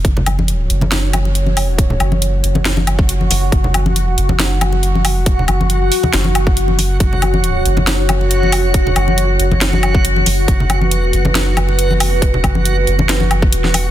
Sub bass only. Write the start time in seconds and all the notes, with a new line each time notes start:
0.05 F#1
0.70 F#1
2.00 F#1
2.43 F#1
3.31 F#1
3.52 F#1
3.97 F1
4.18 F#1
5.09 F1
5.35 E1
5.48 F#1
6.13 F#1
7.00 F#1
7.65 F#1
8.56 F1
8.81 E1
8.96 F#1
9.39 F#1
10.26 F#1
10.48 F#1
10.93 F1
11.13 F#1
12.04 F1
12.29 E1
12.44 F#1
12.87 F#1
13.53 E1